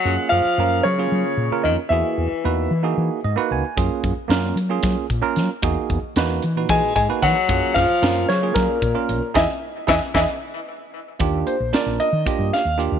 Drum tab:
HH |-------|-------|xxxxxxx|xxxxxxx|
SD |-------|-------|--o-o-o|--o---o|
BD |-------|-------|oo--oo-|oo--ooo|

HH |xxxxxxx|-------|xxxxxxx|
SD |-oooo--|o-oo---|--o--o-|
BD |oo--oo-|o-oo---|o---o--|